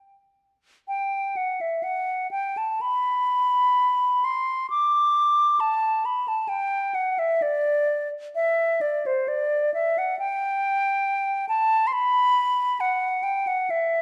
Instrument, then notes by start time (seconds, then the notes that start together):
flute
0.88 G5
1.37 F#5
1.61 E5
1.83 F#5
2.31 G5
2.57 A5
2.81 B5
4.24 C6
4.70 D6
5.60 A5
6.05 B5
6.28 A5
6.49 G5
6.95 F#5
7.19 E5
7.42 D5
8.35 E5
8.81 D5
9.06 C5
9.28 D5
9.74 E5
9.98 F#5
10.19 G5
11.49 A5
11.87 C6
11.93 B5
12.80 F#5
13.23 G5
13.47 F#5
13.70 E5